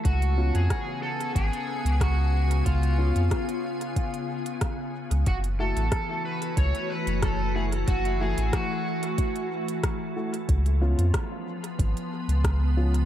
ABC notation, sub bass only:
X:1
M:4/4
L:1/16
Q:1/4=92
K:F#m
V:1 name="Sub bass" clef=bass
C,,3 ^E,, z4 G,,, z2 C,,4- C,, | C,,3 ^E,, z8 z3 C,, | F,,,3 A,,, z4 C,, z2 F,,,4- F,,, | F,,,3 A,,, z12 |
C,,3 ^E,, z4 G,,, z2 C,,4- C,, |]